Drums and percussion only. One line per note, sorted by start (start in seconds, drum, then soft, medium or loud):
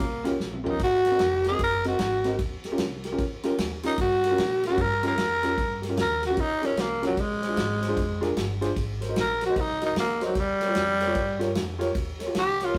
0.00 kick loud
0.00 snare soft
0.00 ride medium
0.25 snare soft
0.25 ride medium
0.40 snare medium
0.53 mid tom medium
0.66 floor tom loud
0.79 kick loud
0.79 snare soft
0.79 ride medium
1.05 snare soft
1.05 ride medium
1.19 snare loud
1.19 ride loud
1.44 snare soft
1.44 ride medium
1.59 kick loud
1.59 snare soft
1.59 ride medium
1.84 snare soft
1.84 ride medium
1.99 snare loud
1.99 ride medium
2.24 snare soft
2.24 ride medium
2.39 kick loud
2.39 snare soft
2.39 ride medium
2.64 snare soft
2.64 ride medium
2.78 snare loud
2.78 ride medium
3.04 snare soft
3.04 ride medium
3.18 kick loud
3.18 snare soft
3.18 ride medium
3.43 snare soft
3.43 ride medium
3.58 snare loud
3.58 ride medium
3.83 snare soft
3.83 ride medium
3.98 kick loud
3.98 snare soft
3.98 ride medium
4.24 snare soft
4.24 ride medium
4.38 snare loud
4.38 ride loud
4.63 snare soft
4.63 ride medium
4.78 kick loud
4.78 snare soft
4.78 ride medium
5.03 snare soft
5.03 ride medium
5.18 snare loud
5.18 ride medium
5.43 snare soft
5.43 ride medium
5.58 kick loud
5.58 snare soft
5.58 ride medium
5.83 snare soft
5.83 ride medium
5.97 snare loud
5.97 ride medium
6.23 snare soft
6.23 ride medium
6.37 kick loud
6.37 snare soft
6.37 ride medium
6.63 snare soft
6.63 ride medium
6.77 snare loud
6.77 ride medium
7.03 snare soft
7.03 ride medium
7.17 kick loud
7.17 snare soft
7.17 ride medium
7.43 snare soft
7.43 ride medium
7.57 snare loud
7.57 ride loud
7.83 snare soft
7.83 ride medium
7.97 kick loud
7.97 snare soft
7.97 ride medium
8.23 snare soft
8.23 ride medium
8.37 snare loud
8.37 ride medium
8.62 snare soft
8.62 ride medium
8.76 kick loud
8.76 snare soft
8.76 ride medium
9.02 snare soft
9.02 ride medium
9.16 snare loud
9.16 ride medium
9.41 snare soft
9.41 ride medium
9.56 kick loud
9.56 snare soft
9.56 ride medium
9.82 snare soft
9.82 ride medium
9.96 snare loud
9.96 ride medium
10.21 snare soft
10.21 ride medium
10.35 kick loud
10.35 snare soft
10.35 ride medium
10.61 snare soft
10.61 ride medium
10.75 snare loud
10.75 ride loud
11.00 snare soft
11.00 ride medium
11.15 kick loud
11.15 snare soft
11.15 ride medium
11.41 snare soft
11.41 ride medium
11.55 snare loud
11.55 ride medium
11.81 snare soft
11.81 ride medium
11.95 kick loud
11.95 snare soft
11.95 ride medium
12.20 snare soft
12.20 ride medium
12.35 snare loud
12.35 ride loud
12.61 snare soft
12.61 ride medium
12.75 kick loud